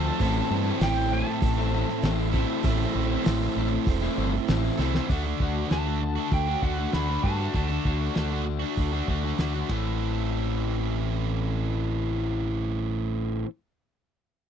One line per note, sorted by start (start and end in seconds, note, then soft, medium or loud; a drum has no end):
0.00 0.10 D2 medium
0.00 0.18 F3 medium
0.00 0.20 A3 medium
0.00 0.17 C4 medium
0.00 0.21 C4 medium
0.00 0.17 F4 medium
0.00 0.19 F4 medium
0.00 0.17 A4 medium
0.00 0.22 A4 medium
0.00 0.20 C5 medium
0.00 0.82 A5 loud
0.19 0.41 A1 loud
0.19 0.80 A2 loud
0.19 0.81 E3 loud
0.19 0.67 A3 loud
0.19 2.62 C4 medium
0.19 0.66 C4 loud
0.19 2.62 E4 medium
0.19 0.65 E4 loud
0.19 2.62 A4 medium
0.19 2.31 A4 loud
0.19 0.48 C5 medium
0.19 2.62 E5 medium
0.19 kick loud
0.19 open hi-hat medium
0.49 0.71 G2 medium
0.49 0.80 A3 soft
0.49 0.81 C4 soft
0.49 0.81 E4 medium
0.49 0.81 C5 medium
0.65 0.82 A3 medium
0.65 0.82 C4 medium
0.65 0.83 E4 medium
0.81 1.22 A1 loud
0.81 2.03 A2 loud
0.81 1.11 E3 loud
0.81 1.12 A3 loud
0.81 1.13 C4 loud
0.81 1.14 E4 loud
0.81 1.09 C5 medium
0.81 1.13 G5 loud
0.81 snare loud
0.81 open hi-hat medium
1.11 1.28 E3 medium
1.11 1.28 A3 medium
1.11 1.27 C4 medium
1.11 1.27 E4 medium
1.11 1.42 C5 medium
1.11 4.45 A5 loud
1.28 muted overdriven electric guitar stroke medium
1.41 1.83 A1 loud
1.41 1.72 A3 medium
1.41 1.72 C4 medium
1.41 1.70 E4 medium
1.41 1.70 C5 medium
1.41 kick loud
1.41 open hi-hat medium
1.58 1.74 A3 medium
1.58 1.74 C4 medium
1.58 1.74 E4 medium
1.71 1.89 E3 medium
1.71 1.90 A3 medium
1.71 2.03 C5 medium
1.75 1.88 C4 medium
1.75 1.88 E4 medium
1.89 muted overdriven electric guitar stroke soft
1.89 snare soft
2.03 2.44 A1 medium
2.03 2.49 A2 medium
2.03 2.32 E3 loud
2.03 2.21 A3 loud
2.03 2.19 C4 loud
2.03 2.17 E4 loud
2.03 2.31 C5 loud
2.03 snare loud
2.03 open hi-hat medium
2.19 2.35 A3 medium
2.19 2.34 C4 medium
2.19 2.35 E4 medium
2.31 2.60 A2 medium
2.31 2.63 E3 medium
2.31 2.64 A3 medium
2.31 2.66 A4 medium
2.31 2.63 C5 medium
2.31 kick medium
2.31 snare soft
2.36 2.65 C4 medium
2.36 2.65 E4 medium
2.64 2.85 A1 loud
2.64 3.23 A2 medium
2.64 3.24 E3 loud
2.64 3.11 A3 loud
2.64 5.06 C4 medium
2.64 3.10 C4 loud
2.64 5.07 E4 medium
2.64 3.08 E4 loud
2.64 5.07 A4 medium
2.64 4.76 A4 loud
2.64 2.92 C5 loud
2.64 kick loud
2.64 open hi-hat medium
2.93 3.16 A1 medium
2.93 3.23 A3 medium
2.93 3.23 C4 medium
2.93 3.23 E4 medium
2.93 3.24 C5 medium
3.10 3.24 A3 medium
3.10 3.25 C4 medium
3.10 3.26 E4 medium
3.24 3.47 A1 medium
3.24 3.86 A2 loud
3.24 3.54 E3 loud
3.24 3.55 A3 loud
3.24 3.57 C4 loud
3.24 3.57 E4 loud
3.24 3.53 C5 medium
3.24 snare loud
3.24 open hi-hat medium
3.54 3.77 A1 medium
3.54 3.71 E3 medium
3.54 3.70 A3 medium
3.54 3.70 C4 medium
3.54 3.70 E4 medium
3.54 3.86 C5 medium
3.71 muted overdriven electric guitar stroke soft
3.85 4.07 E1 loud
3.85 4.16 A3 medium
3.85 4.17 C4 medium
3.85 4.16 E4 medium
3.85 4.15 C5 medium
3.85 kick loud
3.85 open hi-hat medium
4.02 4.17 A3 medium
4.02 4.18 C4 medium
4.02 4.19 E4 medium
4.16 4.38 G1 medium
4.16 4.33 E3 medium
4.16 4.33 A3 medium
4.16 4.33 C4 medium
4.16 4.32 E4 medium
4.16 4.47 C5 medium
4.33 muted overdriven electric guitar stroke medium
4.48 4.69 A1 medium
4.48 4.94 A2 medium
4.48 4.78 E3 loud
4.48 4.65 A3 medium
4.48 4.64 C4 loud
4.48 4.63 E4 loud
4.48 4.78 C5 loud
4.48 snare loud
4.48 open hi-hat medium
4.64 4.79 A3 medium
4.64 4.80 C4 medium
4.64 4.81 E4 medium
4.77 4.99 C2 loud
4.77 5.08 E3 medium
4.77 5.08 A3 medium
4.77 5.09 C4 medium
4.77 5.07 A4 medium
4.77 5.09 C5 medium
4.77 snare medium
4.82 5.09 A2 medium
4.82 5.09 E4 medium
4.95 snare medium
5.10 5.32 D2 loud
5.10 5.41 D3 medium
5.10 5.27 A3 medium
5.10 5.26 D4 loud
5.10 5.26 F#4 loud
5.10 kick medium
5.10 open hi-hat soft
5.23 5.71 A3 medium
5.23 5.72 D4 medium
5.23 5.73 F#4 medium
5.23 muted overdriven electric guitar stroke soft
5.40 5.63 D2 medium
5.40 5.71 D3 medium
5.40 5.72 A3 medium
5.40 5.72 D4 medium
5.40 5.73 F#4 medium
5.40 kick medium
5.71 6.17 D2 medium
5.71 6.62 D3 medium
5.71 5.89 A3 medium
5.71 5.88 D4 loud
5.71 5.86 F#4 loud
5.71 6.29 A5 medium
5.71 snare loud
5.71 open hi-hat soft
5.87 6.50 A3 medium
5.87 6.48 D4 medium
5.87 6.47 F#4 medium
6.02 muted distorted electric guitar stroke soft
6.16 6.50 A3 medium
6.16 6.47 D4 medium
6.16 6.45 F#4 medium
6.32 6.55 D2 medium
6.32 6.62 G5 medium
6.32 kick loud
6.32 open hi-hat soft
6.48 6.63 A3 medium
6.48 6.63 D4 medium
6.48 6.64 F#4 medium
6.62 6.85 D2 medium
6.62 6.93 D3 medium
6.62 6.80 A3 medium
6.62 6.78 D4 medium
6.62 6.77 F#4 medium
6.62 6.94 F#5 medium
6.62 kick medium
6.78 6.94 A3 medium
6.78 6.95 D4 medium
6.78 6.95 F#4 medium
6.93 7.17 D2 medium
6.93 7.23 D3 medium
6.93 7.11 A3 medium
6.93 7.09 D4 loud
6.93 7.07 F#4 medium
6.93 7.22 B5 loud
6.93 snare loud
6.93 open hi-hat soft
7.09 7.25 A3 medium
7.09 7.25 D4 medium
7.09 7.26 F#4 medium
7.23 7.47 G2 medium
7.23 7.53 D3 medium
7.23 7.41 A3 medium
7.23 7.40 D4 medium
7.23 9.35 A5 medium
7.23 kick medium
7.27 7.38 F#4 medium
7.39 7.54 A3 medium
7.39 7.55 D4 medium
7.39 7.56 F#4 medium
7.54 7.78 D2 medium
7.54 7.84 D3 medium
7.54 7.70 A3 medium
7.54 7.69 D4 medium
7.54 7.69 F#4 medium
7.54 kick medium
7.54 open hi-hat soft
7.68 8.14 A3 medium
7.68 8.15 D4 medium
7.68 8.16 F#4 medium
7.68 muted overdriven electric guitar stroke soft
7.85 8.08 D2 medium
7.85 8.14 D3 medium
7.85 8.15 A3 medium
7.85 8.16 D4 medium
7.85 8.17 F#4 medium
7.85 kick medium
8.15 8.63 D2 medium
8.15 8.62 D3 medium
8.15 8.33 A3 medium
8.15 8.31 D4 loud
8.15 8.30 F#4 medium
8.15 snare medium
8.15 open hi-hat soft
8.31 8.94 A3 medium
8.31 8.93 D4 medium
8.31 8.92 F#4 medium
8.45 muted distorted electric guitar stroke soft
8.59 8.94 A3 medium
8.59 8.92 D4 medium
8.59 8.91 F#4 medium
8.77 9.01 D2 medium
8.77 kick medium
8.77 open hi-hat soft
8.93 9.08 A3 medium
8.93 9.09 D4 medium
8.93 9.09 F#4 medium
9.08 9.31 D2 medium
9.08 9.37 D3 medium
9.08 9.25 A3 medium
9.08 9.24 D4 medium
9.08 9.22 F#4 medium
9.08 kick medium
9.23 9.39 A3 soft
9.23 9.39 D4 medium
9.23 9.40 F#4 medium
9.38 9.62 D2 medium
9.38 9.68 D3 medium
9.38 9.55 A3 medium
9.38 9.54 D4 medium
9.38 9.53 F#4 medium
9.38 snare loud
9.38 open hi-hat medium
9.54 9.70 A3 medium
9.54 9.71 D4 medium
9.54 9.70 F#4 medium
9.69 13.43 A1 medium
9.69 13.46 A2 medium
9.69 13.48 E3 medium
9.69 13.50 A3 medium
9.69 13.48 C4 medium
9.69 13.49 E4 medium
9.69 13.50 A4 medium
9.69 kick medium
9.69 ride medium